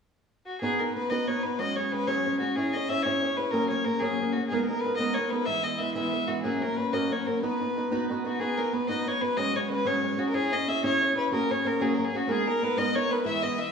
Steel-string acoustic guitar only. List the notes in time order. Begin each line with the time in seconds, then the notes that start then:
0.62 B3 D#4 F#4 B4
0.80 B3 D#4 F#4 B4
0.95 B3 D#4 F#4 B4
1.11 B3 D#4 F#4 B4
1.27 B3 D#4 F#4 B4
1.43 B3 D#4 F#4 B4
1.59 F#3 G#3 C#4 F#4 G#4
1.77 G#3 C#4 F#4 G#4
1.92 G#3 C#4 F#4 G#4
2.07 F#3 G#3 C#4 F#4 G#4
2.25 G#3 C#4 F#4 G#4
2.41 G#3 C#4 F#4 G#4
2.56 C#4 E4 G#4 C#5
2.74 C#4 E4 G#4 C#5
2.89 C#4 E4 G#4 C#5
3.05 C#4 E4 G#4 C#5
3.22 C#4 E4 G#4 C#5
3.37 C#4 E4 G#4 C#5
3.53 F#3 A#3 C#4 F#4 G#4
3.70 A#3 C#4 F#4 G#4
3.85 A#3 C#4 F#4 G#4
4.01 F#3 A#3 C#4 F#4 G#4
4.20 A#3 C#4 F#4 G#4
4.36 A#3 C#4 F#4 G#4
4.51 G#3 B3 D#4 G#4 A#4
4.69 B3 D#4 G#4 A#4
4.85 B3 D#4 G#4 A#4
4.99 G#3 B3 D#4 G#4 A#4
5.17 B3 D#4 G#4 A#4
5.32 B3 D#4 G#4 A#4
5.47 E3 G#3 B3 E4
5.64 E3 G#3 B3 E4
5.80 E3 G#3 B3 E4
5.95 E3 G#3 B3 E4
6.13 E3 G#3 B3 E4
6.28 E3 G#3 B3 E4
6.44 F#3 A#3 C#4 F#4
6.61 F#3 A#3 C#4 F#4
6.77 F#3 A#3 C#4 F#4
6.93 F#3 A#3 C#4 F#4
7.11 F#3 A#3 C#4 F#4
7.26 F#3 A#3 C#4 F#4
7.43 B3 D#4 F#4 B4
7.60 B3 D#4 F#4 B4
7.76 B3 D#4 F#4 B4
7.91 B3 D#4 F#4 B4
8.09 B3 D#4 F#4 B4
8.24 B3 D#4 F#4 B4
8.40 B3 D#4 F#4 B4
8.57 B3 D#4 F#4 B4
8.73 B3 D#4 F#4 B4
8.88 B3 D#4 F#4 B4
9.06 B3 D#4 F#4 B4
9.21 B3 D#4 F#4 B4
9.37 F#3 G#3 C#4 F#4 G#4
9.54 G#3 C#4 F#4 G#4
9.70 G#3 C#4 F#4 G#4
9.85 F#3 G#3 C#4 F#4 G#4
10.02 G#3 C#4 F#4 G#4
10.17 G#3 C#4 F#4 G#4
10.33 C#4 E4 G#4 C#5
10.52 C#4 E4
10.67 C#4 E4 G#4 C#5
10.83 C#4 E4 G#4 C#5
11.01 C#4 E4 G#4 C#5
11.16 C#4 E4 G#4 C#5
11.31 F#3 A#3 C#4 F#4 G#4
11.49 A#3 C#4 F#4 G#4
11.64 A#3 C#4 F#4 G#4
11.80 F#3 A#3 C#4 F#4 G#4
11.98 A#3 C#4 F#4 G#4
12.13 A#3 C#4 F#4 G#4
12.27 G#3 B3 D#4 G#4 A#4
12.46 B3 D#4 G#4 A#4
12.61 B3 D#4 G#4 A#4
12.77 G#3 B3 D#4 G#4 A#4
12.95 B3 D#4 G#4 A#4
13.10 B3 D#4 G#4 A#4
13.25 E3 G#3 B3 E4
13.43 E3 G#3 B3 E4
13.58 E3 G#3 B3 E4